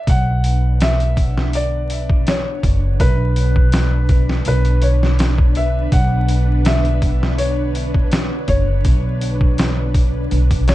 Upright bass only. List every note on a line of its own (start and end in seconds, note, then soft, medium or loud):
0.07 2.43 B1 loud
2.64 2.96 F#1 medium
3.00 4.43 B1 loud
4.46 5.89 B1 medium
5.92 8.28 B1 medium
8.48 8.81 F#1 medium
8.85 10.28 B1 medium
10.32 10.75 B1 medium